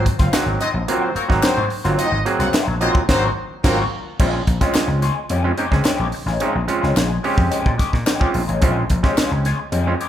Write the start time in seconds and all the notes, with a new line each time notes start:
0.05 muted clean electric guitar stroke, kick, closed hi-hat
0.19 F#1 F#3 C4 F4 F5, kick, snare, closed hi-hat
0.32 F#3 A#3 C4 D#4 F4, muted slap bass stroke, snare, clap, closed hi-hat
0.46 G#1, muted clean electric guitar stroke
0.60 F#3 C4 D#4 F4 D#5, snare, closed hi-hat
0.74 A#1, muted clean electric guitar stroke
0.88 F#3 A#3 C4 F4 F#4, closed hi-hat
1.00 C4 C5, muted clean electric guitar stroke
1.15 F#3 A#3 C4 F#4 A#4, muted slap bass stroke, closed hi-hat
1.29 G#1 F#3 A#3 C4 D#4, muted clean electric guitar stroke, kick, snare
1.41 F#3 C4 F#4 C5, snare, clap, closed hi-hat
1.57 G#2
1.70 muted clean electric guitar stroke, open hi-hat
1.84 G1 F#3 A#3 C4 F4, snare, closed hi-hat
1.97 F#3 C4 D#4 F4 D#5, closed hi-hat
2.12 G#1, muted clean electric guitar stroke
2.25 F#3 A#3 C4 G#4, muted clean electric guitar stroke, closed hi-hat
2.39 C2 F#3 C4 F4 F#4 F#5, snare, closed hi-hat
2.53 F#3 C4 F4, muted slap bass stroke, snare, clap, closed hi-hat
2.67 A#1, muted clean electric guitar stroke
2.81 F#3 A#3 C4 D#4 F4 D#5, closed hi-hat
2.95 muted clean electric guitar stroke, kick
3.08 G#1 F#3 A#3 C4 D#4 F#4 C5, kick, snare, crash
3.63 G#1 F#3 A#3 C4 F4 F#4 A#4, kick, snare, crash
4.19 A#1 G#3 C4 C#4 F4, kick, crash
4.34 muted clean electric guitar stroke
4.47 A#1, muted clean electric guitar stroke, kick, closed hi-hat
4.61 G#3 C4 C#4 F4, kick, snare, closed hi-hat
4.74 G#3 C#4 F4, muted slap bass stroke, snare, clap, closed hi-hat
4.88 C#2, muted clean electric guitar stroke
5.02 G#3 C#4 F4, snare, closed hi-hat
5.16 muted clean electric guitar stroke
5.30 F2 G#3 C#4 G4, closed hi-hat
5.44 G#3 C4 C#4 F4, muted clean electric guitar stroke
5.58 G#3 C4 C#4 D#4 G4, closed hi-hat
5.71 C#2 G#3 C4 C#4 G#4, muted clean electric guitar stroke, kick, snare
5.84 G#3 C#4 G4, muted slap bass stroke, snare, clap, closed hi-hat
5.99 A#1
6.12 muted clean electric guitar stroke, open hi-hat
6.26 A1 G#3 C#4 F4, snare
6.40 G#3 C4 C#4 D#4 F4, closed hi-hat
6.54 A#1, muted clean electric guitar stroke
6.68 G#3 C4 C#4 F4, muted clean electric guitar stroke, closed hi-hat
6.81 C#2 G#3 C#4 F4, snare
6.96 A#1 G#3 C#4 F4, snare, clap, closed hi-hat
7.09 muted clean electric guitar stroke
7.23 G#3 C4 C#4 F4 G4, open hi-hat
7.37 F2, muted clean electric guitar stroke, kick
7.51 G#3 C#4 G4, muted slap bass stroke, closed hi-hat
7.65 A#2, muted clean electric guitar stroke, kick
7.78 G#3 C#4 G4, kick, snare, closed hi-hat
7.92 A#2, muted clean electric guitar stroke, kick, snare
8.06 G#3 C#4 G4, snare, clap, closed hi-hat
8.20 G#3 C4 C#4 F4, kick
8.34 A#1, muted clean electric guitar stroke, open hi-hat
8.48 A1 G#3 C#4 F4, closed hi-hat
8.61 A#1 G#3 C4 C#4 F4, kick, closed hi-hat
8.77 muted clean electric guitar stroke
8.90 A#1, muted clean electric guitar stroke, kick, closed hi-hat
9.03 G#3 C4 C#4 F4 G4, kick, snare
9.18 G#3 C#4 F4, muted slap bass stroke, snare, clap, closed hi-hat
9.31 C#2, muted clean electric guitar stroke
9.45 G#3 C#4 F4, snare, closed hi-hat
9.59 muted clean electric guitar stroke
9.72 F2 G#3 C#4 G4, closed hi-hat
9.87 G#3 C4 C#4 F4, muted clean electric guitar stroke
10.00 G#3 C#4 G4, closed hi-hat